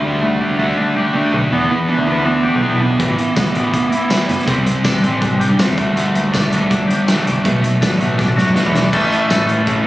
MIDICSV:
0, 0, Header, 1, 5, 480
1, 0, Start_track
1, 0, Tempo, 370599
1, 39, Time_signature, 4, 2, 24, 8
1, 12782, End_track
2, 0, Start_track
2, 0, Title_t, "Clean electric guitar"
2, 0, Program_c, 0, 27
2, 0, Note_on_c, 0, 62, 64
2, 0, Note_on_c, 0, 67, 70
2, 38, Note_on_c, 0, 55, 73
2, 270, Note_on_c, 0, 57, 65
2, 309, Note_off_c, 0, 67, 0
2, 510, Note_off_c, 0, 62, 0
2, 515, Note_on_c, 0, 62, 68
2, 744, Note_off_c, 0, 57, 0
2, 760, Note_on_c, 0, 57, 67
2, 988, Note_off_c, 0, 62, 0
2, 1004, Note_on_c, 0, 62, 66
2, 1239, Note_off_c, 0, 55, 0
2, 1249, Note_on_c, 0, 67, 71
2, 1481, Note_off_c, 0, 57, 0
2, 1497, Note_on_c, 0, 57, 65
2, 1727, Note_off_c, 0, 62, 0
2, 1742, Note_on_c, 0, 62, 58
2, 1965, Note_off_c, 0, 67, 0
2, 1968, Note_off_c, 0, 57, 0
2, 1971, Note_off_c, 0, 62, 0
2, 1979, Note_on_c, 0, 59, 72
2, 2195, Note_off_c, 0, 59, 0
2, 2210, Note_on_c, 0, 59, 64
2, 2447, Note_on_c, 0, 62, 62
2, 2665, Note_off_c, 0, 59, 0
2, 2680, Note_on_c, 0, 59, 60
2, 2900, Note_off_c, 0, 62, 0
2, 2916, Note_on_c, 0, 62, 64
2, 3151, Note_on_c, 0, 67, 68
2, 3380, Note_off_c, 0, 59, 0
2, 3395, Note_on_c, 0, 59, 66
2, 3616, Note_off_c, 0, 62, 0
2, 3631, Note_on_c, 0, 62, 58
2, 3870, Note_on_c, 0, 52, 65
2, 3875, Note_off_c, 0, 67, 0
2, 3876, Note_off_c, 0, 62, 0
2, 3878, Note_off_c, 0, 59, 0
2, 4094, Note_off_c, 0, 52, 0
2, 4109, Note_on_c, 0, 52, 61
2, 4348, Note_on_c, 0, 59, 68
2, 4568, Note_off_c, 0, 52, 0
2, 4583, Note_on_c, 0, 52, 64
2, 4815, Note_off_c, 0, 59, 0
2, 4830, Note_on_c, 0, 59, 60
2, 5058, Note_on_c, 0, 64, 69
2, 5295, Note_off_c, 0, 52, 0
2, 5310, Note_on_c, 0, 52, 66
2, 5526, Note_off_c, 0, 59, 0
2, 5542, Note_on_c, 0, 59, 59
2, 5778, Note_off_c, 0, 59, 0
2, 5783, Note_on_c, 0, 60, 72
2, 5789, Note_off_c, 0, 64, 0
2, 5795, Note_off_c, 0, 52, 0
2, 6010, Note_off_c, 0, 60, 0
2, 6025, Note_on_c, 0, 60, 60
2, 6270, Note_on_c, 0, 62, 69
2, 6496, Note_off_c, 0, 60, 0
2, 6511, Note_on_c, 0, 60, 65
2, 6736, Note_off_c, 0, 62, 0
2, 6741, Note_on_c, 0, 62, 64
2, 6989, Note_on_c, 0, 67, 73
2, 7226, Note_off_c, 0, 60, 0
2, 7241, Note_on_c, 0, 60, 71
2, 7473, Note_off_c, 0, 60, 0
2, 7475, Note_off_c, 0, 67, 0
2, 7479, Note_on_c, 0, 57, 64
2, 7709, Note_off_c, 0, 57, 0
2, 7714, Note_on_c, 0, 57, 78
2, 7958, Note_off_c, 0, 57, 0
2, 7963, Note_on_c, 0, 57, 66
2, 8184, Note_off_c, 0, 62, 0
2, 8189, Note_on_c, 0, 62, 69
2, 8432, Note_off_c, 0, 57, 0
2, 8437, Note_on_c, 0, 57, 70
2, 8660, Note_off_c, 0, 62, 0
2, 8676, Note_on_c, 0, 62, 73
2, 8904, Note_on_c, 0, 67, 75
2, 9143, Note_off_c, 0, 57, 0
2, 9149, Note_on_c, 0, 57, 70
2, 9381, Note_off_c, 0, 62, 0
2, 9396, Note_on_c, 0, 62, 61
2, 9623, Note_off_c, 0, 57, 0
2, 9628, Note_on_c, 0, 57, 74
2, 9633, Note_off_c, 0, 67, 0
2, 9639, Note_off_c, 0, 62, 0
2, 9850, Note_off_c, 0, 57, 0
2, 9866, Note_on_c, 0, 57, 65
2, 10114, Note_on_c, 0, 62, 68
2, 10340, Note_off_c, 0, 57, 0
2, 10355, Note_on_c, 0, 57, 66
2, 10576, Note_off_c, 0, 62, 0
2, 10591, Note_on_c, 0, 62, 67
2, 10832, Note_on_c, 0, 66, 71
2, 11054, Note_off_c, 0, 57, 0
2, 11070, Note_on_c, 0, 57, 74
2, 11298, Note_off_c, 0, 62, 0
2, 11313, Note_on_c, 0, 62, 64
2, 11544, Note_off_c, 0, 57, 0
2, 11545, Note_on_c, 0, 52, 86
2, 11558, Note_off_c, 0, 62, 0
2, 11558, Note_off_c, 0, 66, 0
2, 11560, Note_on_c, 0, 57, 89
2, 11566, Note_on_c, 0, 61, 88
2, 11576, Note_on_c, 0, 69, 100
2, 12023, Note_off_c, 0, 52, 0
2, 12028, Note_on_c, 0, 52, 86
2, 12033, Note_off_c, 0, 57, 0
2, 12038, Note_on_c, 0, 57, 90
2, 12045, Note_off_c, 0, 61, 0
2, 12051, Note_on_c, 0, 61, 90
2, 12052, Note_off_c, 0, 69, 0
2, 12057, Note_on_c, 0, 69, 94
2, 12739, Note_off_c, 0, 69, 0
2, 12761, Note_off_c, 0, 61, 0
2, 12773, Note_off_c, 0, 57, 0
2, 12782, Note_off_c, 0, 52, 0
2, 12782, End_track
3, 0, Start_track
3, 0, Title_t, "Distorted electric guitar"
3, 0, Program_c, 1, 30
3, 50, Note_on_c, 1, 50, 83
3, 56, Note_on_c, 1, 57, 81
3, 62, Note_on_c, 1, 62, 84
3, 270, Note_off_c, 1, 50, 0
3, 273, Note_off_c, 1, 57, 0
3, 276, Note_off_c, 1, 62, 0
3, 294, Note_on_c, 1, 50, 72
3, 299, Note_on_c, 1, 57, 74
3, 503, Note_off_c, 1, 50, 0
3, 505, Note_off_c, 1, 57, 0
3, 524, Note_on_c, 1, 50, 63
3, 534, Note_on_c, 1, 57, 72
3, 738, Note_off_c, 1, 50, 0
3, 743, Note_off_c, 1, 57, 0
3, 759, Note_on_c, 1, 50, 84
3, 769, Note_on_c, 1, 57, 88
3, 773, Note_on_c, 1, 62, 87
3, 985, Note_off_c, 1, 50, 0
3, 990, Note_off_c, 1, 57, 0
3, 992, Note_off_c, 1, 62, 0
3, 1001, Note_on_c, 1, 50, 75
3, 1011, Note_on_c, 1, 57, 70
3, 1217, Note_off_c, 1, 50, 0
3, 1221, Note_off_c, 1, 57, 0
3, 1243, Note_on_c, 1, 50, 64
3, 1250, Note_on_c, 1, 57, 70
3, 1457, Note_off_c, 1, 50, 0
3, 1461, Note_off_c, 1, 57, 0
3, 1478, Note_on_c, 1, 50, 74
3, 1482, Note_on_c, 1, 57, 75
3, 1496, Note_on_c, 1, 62, 90
3, 1704, Note_off_c, 1, 50, 0
3, 1706, Note_off_c, 1, 57, 0
3, 1714, Note_off_c, 1, 62, 0
3, 1725, Note_on_c, 1, 50, 69
3, 1734, Note_on_c, 1, 57, 74
3, 1939, Note_off_c, 1, 50, 0
3, 1943, Note_off_c, 1, 57, 0
3, 1966, Note_on_c, 1, 52, 81
3, 1978, Note_on_c, 1, 59, 77
3, 1983, Note_on_c, 1, 64, 90
3, 2189, Note_off_c, 1, 52, 0
3, 2195, Note_off_c, 1, 59, 0
3, 2197, Note_off_c, 1, 64, 0
3, 2211, Note_on_c, 1, 52, 63
3, 2216, Note_on_c, 1, 59, 74
3, 2421, Note_off_c, 1, 52, 0
3, 2424, Note_off_c, 1, 59, 0
3, 2443, Note_on_c, 1, 52, 70
3, 2450, Note_on_c, 1, 59, 73
3, 2657, Note_off_c, 1, 52, 0
3, 2661, Note_off_c, 1, 59, 0
3, 2681, Note_on_c, 1, 52, 81
3, 2688, Note_on_c, 1, 59, 78
3, 2694, Note_on_c, 1, 64, 98
3, 2899, Note_off_c, 1, 52, 0
3, 2909, Note_off_c, 1, 59, 0
3, 2913, Note_off_c, 1, 64, 0
3, 2915, Note_on_c, 1, 52, 62
3, 2923, Note_on_c, 1, 59, 75
3, 3133, Note_off_c, 1, 52, 0
3, 3137, Note_off_c, 1, 59, 0
3, 3166, Note_on_c, 1, 52, 64
3, 3170, Note_on_c, 1, 59, 69
3, 3379, Note_off_c, 1, 52, 0
3, 3381, Note_off_c, 1, 59, 0
3, 3396, Note_on_c, 1, 52, 76
3, 3402, Note_on_c, 1, 59, 85
3, 3408, Note_on_c, 1, 64, 87
3, 3618, Note_off_c, 1, 52, 0
3, 3626, Note_off_c, 1, 59, 0
3, 3630, Note_off_c, 1, 64, 0
3, 3633, Note_on_c, 1, 52, 61
3, 3644, Note_on_c, 1, 59, 70
3, 3853, Note_off_c, 1, 52, 0
3, 3858, Note_off_c, 1, 59, 0
3, 3873, Note_on_c, 1, 57, 66
3, 3880, Note_on_c, 1, 59, 82
3, 3886, Note_on_c, 1, 64, 82
3, 4098, Note_off_c, 1, 57, 0
3, 4106, Note_off_c, 1, 59, 0
3, 4109, Note_off_c, 1, 64, 0
3, 4114, Note_on_c, 1, 57, 62
3, 4122, Note_on_c, 1, 59, 66
3, 4333, Note_off_c, 1, 57, 0
3, 4337, Note_off_c, 1, 59, 0
3, 4349, Note_on_c, 1, 57, 64
3, 4360, Note_on_c, 1, 59, 67
3, 4567, Note_off_c, 1, 57, 0
3, 4576, Note_off_c, 1, 59, 0
3, 4583, Note_on_c, 1, 57, 77
3, 4596, Note_on_c, 1, 59, 78
3, 4598, Note_on_c, 1, 64, 91
3, 4817, Note_off_c, 1, 57, 0
3, 4820, Note_off_c, 1, 59, 0
3, 4825, Note_off_c, 1, 64, 0
3, 4830, Note_on_c, 1, 57, 64
3, 4836, Note_on_c, 1, 59, 71
3, 5046, Note_off_c, 1, 57, 0
3, 5054, Note_off_c, 1, 59, 0
3, 5061, Note_on_c, 1, 57, 60
3, 5069, Note_on_c, 1, 59, 73
3, 5287, Note_off_c, 1, 57, 0
3, 5291, Note_off_c, 1, 59, 0
3, 5306, Note_on_c, 1, 57, 73
3, 5311, Note_on_c, 1, 59, 84
3, 5318, Note_on_c, 1, 64, 89
3, 5530, Note_off_c, 1, 57, 0
3, 5532, Note_off_c, 1, 59, 0
3, 5545, Note_off_c, 1, 64, 0
3, 5545, Note_on_c, 1, 57, 66
3, 5548, Note_on_c, 1, 59, 68
3, 5769, Note_off_c, 1, 57, 0
3, 5770, Note_off_c, 1, 59, 0
3, 5776, Note_on_c, 1, 48, 76
3, 5786, Note_on_c, 1, 55, 78
3, 5792, Note_on_c, 1, 60, 87
3, 6004, Note_off_c, 1, 48, 0
3, 6011, Note_off_c, 1, 55, 0
3, 6019, Note_on_c, 1, 48, 72
3, 6021, Note_off_c, 1, 60, 0
3, 6026, Note_on_c, 1, 55, 76
3, 6246, Note_off_c, 1, 48, 0
3, 6249, Note_off_c, 1, 55, 0
3, 6269, Note_on_c, 1, 48, 68
3, 6276, Note_on_c, 1, 55, 71
3, 6483, Note_off_c, 1, 48, 0
3, 6487, Note_off_c, 1, 55, 0
3, 6498, Note_on_c, 1, 48, 79
3, 6502, Note_on_c, 1, 55, 86
3, 6515, Note_on_c, 1, 60, 103
3, 6728, Note_off_c, 1, 48, 0
3, 6734, Note_off_c, 1, 55, 0
3, 6743, Note_off_c, 1, 60, 0
3, 6743, Note_on_c, 1, 48, 72
3, 6749, Note_on_c, 1, 55, 74
3, 6968, Note_off_c, 1, 48, 0
3, 6971, Note_off_c, 1, 55, 0
3, 6990, Note_on_c, 1, 48, 65
3, 6999, Note_on_c, 1, 55, 67
3, 7211, Note_off_c, 1, 48, 0
3, 7216, Note_off_c, 1, 55, 0
3, 7230, Note_on_c, 1, 48, 86
3, 7237, Note_on_c, 1, 55, 82
3, 7246, Note_on_c, 1, 60, 94
3, 7461, Note_off_c, 1, 48, 0
3, 7464, Note_off_c, 1, 55, 0
3, 7469, Note_off_c, 1, 60, 0
3, 7482, Note_on_c, 1, 50, 80
3, 7494, Note_on_c, 1, 55, 86
3, 7494, Note_on_c, 1, 57, 97
3, 7707, Note_off_c, 1, 50, 0
3, 7713, Note_off_c, 1, 55, 0
3, 7713, Note_off_c, 1, 57, 0
3, 7720, Note_on_c, 1, 50, 72
3, 7731, Note_on_c, 1, 55, 82
3, 7734, Note_on_c, 1, 57, 85
3, 7946, Note_off_c, 1, 50, 0
3, 7951, Note_off_c, 1, 55, 0
3, 7953, Note_off_c, 1, 57, 0
3, 7968, Note_on_c, 1, 50, 65
3, 7973, Note_on_c, 1, 55, 76
3, 8180, Note_off_c, 1, 50, 0
3, 8183, Note_off_c, 1, 55, 0
3, 8199, Note_on_c, 1, 50, 70
3, 8203, Note_on_c, 1, 55, 72
3, 8416, Note_off_c, 1, 50, 0
3, 8418, Note_off_c, 1, 55, 0
3, 8432, Note_on_c, 1, 50, 85
3, 8442, Note_on_c, 1, 55, 100
3, 8444, Note_on_c, 1, 57, 106
3, 8662, Note_off_c, 1, 50, 0
3, 8667, Note_off_c, 1, 55, 0
3, 8668, Note_off_c, 1, 57, 0
3, 8683, Note_on_c, 1, 50, 73
3, 8688, Note_on_c, 1, 55, 78
3, 8898, Note_off_c, 1, 50, 0
3, 8900, Note_off_c, 1, 55, 0
3, 8919, Note_on_c, 1, 50, 63
3, 8930, Note_on_c, 1, 55, 77
3, 9136, Note_off_c, 1, 50, 0
3, 9141, Note_off_c, 1, 55, 0
3, 9171, Note_on_c, 1, 50, 82
3, 9177, Note_on_c, 1, 55, 83
3, 9183, Note_on_c, 1, 57, 93
3, 9392, Note_off_c, 1, 50, 0
3, 9395, Note_off_c, 1, 55, 0
3, 9398, Note_off_c, 1, 57, 0
3, 9413, Note_on_c, 1, 50, 73
3, 9419, Note_on_c, 1, 55, 72
3, 9623, Note_off_c, 1, 50, 0
3, 9626, Note_off_c, 1, 55, 0
3, 9644, Note_on_c, 1, 47, 80
3, 9654, Note_on_c, 1, 54, 78
3, 9662, Note_on_c, 1, 59, 84
3, 9868, Note_off_c, 1, 47, 0
3, 9873, Note_off_c, 1, 54, 0
3, 9877, Note_off_c, 1, 59, 0
3, 9896, Note_on_c, 1, 47, 70
3, 9900, Note_on_c, 1, 54, 72
3, 10105, Note_off_c, 1, 47, 0
3, 10107, Note_off_c, 1, 54, 0
3, 10134, Note_on_c, 1, 47, 66
3, 10136, Note_on_c, 1, 54, 80
3, 10344, Note_off_c, 1, 47, 0
3, 10345, Note_off_c, 1, 54, 0
3, 10367, Note_on_c, 1, 47, 98
3, 10380, Note_on_c, 1, 54, 88
3, 10385, Note_on_c, 1, 59, 95
3, 10581, Note_off_c, 1, 47, 0
3, 10587, Note_off_c, 1, 54, 0
3, 10596, Note_on_c, 1, 47, 77
3, 10599, Note_off_c, 1, 59, 0
3, 10602, Note_on_c, 1, 54, 80
3, 10815, Note_off_c, 1, 47, 0
3, 10818, Note_off_c, 1, 54, 0
3, 10844, Note_on_c, 1, 47, 69
3, 10850, Note_on_c, 1, 54, 69
3, 11059, Note_off_c, 1, 47, 0
3, 11062, Note_off_c, 1, 54, 0
3, 11073, Note_on_c, 1, 47, 83
3, 11086, Note_on_c, 1, 54, 84
3, 11093, Note_on_c, 1, 59, 100
3, 11300, Note_off_c, 1, 47, 0
3, 11302, Note_off_c, 1, 54, 0
3, 11313, Note_off_c, 1, 59, 0
3, 11315, Note_on_c, 1, 47, 75
3, 11317, Note_on_c, 1, 54, 77
3, 11535, Note_off_c, 1, 47, 0
3, 11536, Note_off_c, 1, 54, 0
3, 11551, Note_on_c, 1, 45, 84
3, 11564, Note_on_c, 1, 52, 83
3, 11572, Note_on_c, 1, 57, 81
3, 11579, Note_on_c, 1, 61, 89
3, 11586, Note_on_c, 1, 64, 82
3, 12030, Note_off_c, 1, 52, 0
3, 12035, Note_on_c, 1, 52, 61
3, 12039, Note_off_c, 1, 57, 0
3, 12045, Note_on_c, 1, 57, 71
3, 12057, Note_off_c, 1, 61, 0
3, 12062, Note_on_c, 1, 61, 70
3, 12063, Note_off_c, 1, 64, 0
3, 12068, Note_on_c, 1, 64, 77
3, 12282, Note_off_c, 1, 64, 0
3, 12287, Note_on_c, 1, 64, 66
3, 12298, Note_off_c, 1, 61, 0
3, 12303, Note_on_c, 1, 61, 60
3, 12317, Note_off_c, 1, 57, 0
3, 12322, Note_on_c, 1, 57, 58
3, 12514, Note_off_c, 1, 45, 0
3, 12519, Note_on_c, 1, 45, 84
3, 12526, Note_off_c, 1, 57, 0
3, 12527, Note_off_c, 1, 52, 0
3, 12531, Note_off_c, 1, 61, 0
3, 12532, Note_on_c, 1, 52, 94
3, 12542, Note_on_c, 1, 57, 86
3, 12546, Note_on_c, 1, 61, 96
3, 12553, Note_off_c, 1, 64, 0
3, 12558, Note_on_c, 1, 64, 99
3, 12782, Note_off_c, 1, 45, 0
3, 12782, Note_off_c, 1, 52, 0
3, 12782, Note_off_c, 1, 57, 0
3, 12782, Note_off_c, 1, 61, 0
3, 12782, Note_off_c, 1, 64, 0
3, 12782, End_track
4, 0, Start_track
4, 0, Title_t, "Picked electric bass"
4, 0, Program_c, 2, 34
4, 0, Note_on_c, 2, 38, 81
4, 468, Note_off_c, 2, 38, 0
4, 645, Note_on_c, 2, 38, 67
4, 835, Note_off_c, 2, 38, 0
4, 1734, Note_on_c, 2, 35, 82
4, 1825, Note_off_c, 2, 35, 0
4, 1969, Note_on_c, 2, 40, 86
4, 2158, Note_off_c, 2, 40, 0
4, 2559, Note_on_c, 2, 38, 82
4, 3138, Note_off_c, 2, 38, 0
4, 3297, Note_on_c, 2, 35, 72
4, 3386, Note_off_c, 2, 35, 0
4, 3519, Note_on_c, 2, 35, 86
4, 3809, Note_off_c, 2, 35, 0
4, 3881, Note_on_c, 2, 33, 84
4, 4073, Note_off_c, 2, 33, 0
4, 4481, Note_on_c, 2, 33, 70
4, 4673, Note_off_c, 2, 33, 0
4, 5552, Note_on_c, 2, 30, 78
4, 5652, Note_off_c, 2, 30, 0
4, 5795, Note_on_c, 2, 36, 84
4, 5990, Note_off_c, 2, 36, 0
4, 6388, Note_on_c, 2, 33, 88
4, 6971, Note_off_c, 2, 33, 0
4, 7114, Note_on_c, 2, 43, 78
4, 7213, Note_off_c, 2, 43, 0
4, 7348, Note_on_c, 2, 40, 89
4, 7449, Note_off_c, 2, 40, 0
4, 7478, Note_on_c, 2, 38, 90
4, 8153, Note_off_c, 2, 38, 0
4, 8321, Note_on_c, 2, 38, 76
4, 8514, Note_off_c, 2, 38, 0
4, 9405, Note_on_c, 2, 36, 85
4, 9500, Note_off_c, 2, 36, 0
4, 9654, Note_on_c, 2, 35, 92
4, 9841, Note_off_c, 2, 35, 0
4, 10246, Note_on_c, 2, 33, 87
4, 10823, Note_off_c, 2, 33, 0
4, 10968, Note_on_c, 2, 42, 77
4, 11062, Note_off_c, 2, 42, 0
4, 11218, Note_on_c, 2, 40, 99
4, 11501, Note_off_c, 2, 40, 0
4, 11567, Note_on_c, 2, 33, 94
4, 11758, Note_off_c, 2, 33, 0
4, 12057, Note_on_c, 2, 33, 89
4, 12341, Note_off_c, 2, 33, 0
4, 12406, Note_on_c, 2, 45, 77
4, 12694, Note_off_c, 2, 45, 0
4, 12782, End_track
5, 0, Start_track
5, 0, Title_t, "Drums"
5, 3883, Note_on_c, 9, 36, 96
5, 3883, Note_on_c, 9, 42, 86
5, 4013, Note_off_c, 9, 36, 0
5, 4013, Note_off_c, 9, 42, 0
5, 4121, Note_on_c, 9, 42, 66
5, 4251, Note_off_c, 9, 42, 0
5, 4356, Note_on_c, 9, 42, 89
5, 4356, Note_on_c, 9, 54, 101
5, 4359, Note_on_c, 9, 36, 77
5, 4361, Note_on_c, 9, 38, 96
5, 4486, Note_off_c, 9, 42, 0
5, 4486, Note_off_c, 9, 54, 0
5, 4488, Note_off_c, 9, 36, 0
5, 4491, Note_off_c, 9, 38, 0
5, 4599, Note_on_c, 9, 42, 57
5, 4729, Note_off_c, 9, 42, 0
5, 4837, Note_on_c, 9, 42, 83
5, 4838, Note_on_c, 9, 36, 73
5, 4967, Note_off_c, 9, 42, 0
5, 4968, Note_off_c, 9, 36, 0
5, 5078, Note_on_c, 9, 42, 62
5, 5207, Note_off_c, 9, 42, 0
5, 5314, Note_on_c, 9, 42, 77
5, 5314, Note_on_c, 9, 54, 89
5, 5319, Note_on_c, 9, 38, 94
5, 5443, Note_off_c, 9, 42, 0
5, 5443, Note_off_c, 9, 54, 0
5, 5448, Note_off_c, 9, 38, 0
5, 5556, Note_on_c, 9, 42, 61
5, 5561, Note_on_c, 9, 38, 28
5, 5686, Note_off_c, 9, 42, 0
5, 5688, Note_off_c, 9, 38, 0
5, 5688, Note_on_c, 9, 38, 28
5, 5795, Note_on_c, 9, 42, 77
5, 5798, Note_on_c, 9, 36, 104
5, 5817, Note_off_c, 9, 38, 0
5, 5925, Note_off_c, 9, 42, 0
5, 5927, Note_off_c, 9, 36, 0
5, 6039, Note_on_c, 9, 42, 59
5, 6169, Note_off_c, 9, 42, 0
5, 6275, Note_on_c, 9, 42, 77
5, 6275, Note_on_c, 9, 54, 106
5, 6278, Note_on_c, 9, 36, 73
5, 6280, Note_on_c, 9, 38, 98
5, 6404, Note_off_c, 9, 42, 0
5, 6404, Note_off_c, 9, 54, 0
5, 6407, Note_off_c, 9, 36, 0
5, 6410, Note_off_c, 9, 38, 0
5, 6523, Note_on_c, 9, 42, 61
5, 6652, Note_off_c, 9, 42, 0
5, 6754, Note_on_c, 9, 42, 80
5, 6759, Note_on_c, 9, 36, 80
5, 6884, Note_off_c, 9, 42, 0
5, 6889, Note_off_c, 9, 36, 0
5, 7007, Note_on_c, 9, 42, 60
5, 7136, Note_off_c, 9, 42, 0
5, 7242, Note_on_c, 9, 42, 84
5, 7242, Note_on_c, 9, 54, 92
5, 7247, Note_on_c, 9, 38, 102
5, 7371, Note_off_c, 9, 42, 0
5, 7371, Note_off_c, 9, 54, 0
5, 7376, Note_off_c, 9, 38, 0
5, 7484, Note_on_c, 9, 36, 96
5, 7487, Note_on_c, 9, 42, 67
5, 7613, Note_off_c, 9, 36, 0
5, 7616, Note_off_c, 9, 42, 0
5, 7729, Note_on_c, 9, 42, 90
5, 7858, Note_off_c, 9, 42, 0
5, 7967, Note_on_c, 9, 42, 72
5, 8097, Note_off_c, 9, 42, 0
5, 8207, Note_on_c, 9, 36, 72
5, 8215, Note_on_c, 9, 42, 91
5, 8215, Note_on_c, 9, 54, 100
5, 8220, Note_on_c, 9, 38, 103
5, 8337, Note_off_c, 9, 36, 0
5, 8345, Note_off_c, 9, 42, 0
5, 8345, Note_off_c, 9, 54, 0
5, 8350, Note_off_c, 9, 38, 0
5, 8450, Note_on_c, 9, 42, 67
5, 8579, Note_off_c, 9, 42, 0
5, 8690, Note_on_c, 9, 36, 81
5, 8698, Note_on_c, 9, 42, 84
5, 8820, Note_off_c, 9, 36, 0
5, 8827, Note_off_c, 9, 42, 0
5, 8940, Note_on_c, 9, 42, 62
5, 9070, Note_off_c, 9, 42, 0
5, 9171, Note_on_c, 9, 42, 77
5, 9171, Note_on_c, 9, 54, 98
5, 9176, Note_on_c, 9, 38, 100
5, 9301, Note_off_c, 9, 42, 0
5, 9301, Note_off_c, 9, 54, 0
5, 9306, Note_off_c, 9, 38, 0
5, 9416, Note_on_c, 9, 42, 65
5, 9546, Note_off_c, 9, 42, 0
5, 9651, Note_on_c, 9, 36, 106
5, 9651, Note_on_c, 9, 42, 80
5, 9780, Note_off_c, 9, 36, 0
5, 9780, Note_off_c, 9, 42, 0
5, 9892, Note_on_c, 9, 42, 64
5, 10021, Note_off_c, 9, 42, 0
5, 10130, Note_on_c, 9, 36, 74
5, 10132, Note_on_c, 9, 42, 82
5, 10132, Note_on_c, 9, 54, 102
5, 10138, Note_on_c, 9, 38, 109
5, 10259, Note_off_c, 9, 36, 0
5, 10262, Note_off_c, 9, 42, 0
5, 10262, Note_off_c, 9, 54, 0
5, 10267, Note_off_c, 9, 38, 0
5, 10369, Note_on_c, 9, 42, 58
5, 10499, Note_off_c, 9, 42, 0
5, 10607, Note_on_c, 9, 36, 86
5, 10607, Note_on_c, 9, 38, 55
5, 10736, Note_off_c, 9, 36, 0
5, 10736, Note_off_c, 9, 38, 0
5, 10851, Note_on_c, 9, 38, 60
5, 10981, Note_off_c, 9, 38, 0
5, 11083, Note_on_c, 9, 38, 75
5, 11212, Note_off_c, 9, 38, 0
5, 11331, Note_on_c, 9, 38, 87
5, 11461, Note_off_c, 9, 38, 0
5, 11568, Note_on_c, 9, 36, 94
5, 11568, Note_on_c, 9, 49, 101
5, 11697, Note_off_c, 9, 36, 0
5, 11697, Note_off_c, 9, 49, 0
5, 11815, Note_on_c, 9, 42, 72
5, 11945, Note_off_c, 9, 42, 0
5, 12049, Note_on_c, 9, 42, 90
5, 12049, Note_on_c, 9, 54, 100
5, 12054, Note_on_c, 9, 38, 106
5, 12178, Note_off_c, 9, 42, 0
5, 12178, Note_off_c, 9, 54, 0
5, 12183, Note_off_c, 9, 38, 0
5, 12288, Note_on_c, 9, 42, 67
5, 12418, Note_off_c, 9, 42, 0
5, 12527, Note_on_c, 9, 36, 82
5, 12527, Note_on_c, 9, 42, 89
5, 12656, Note_off_c, 9, 42, 0
5, 12657, Note_off_c, 9, 36, 0
5, 12782, End_track
0, 0, End_of_file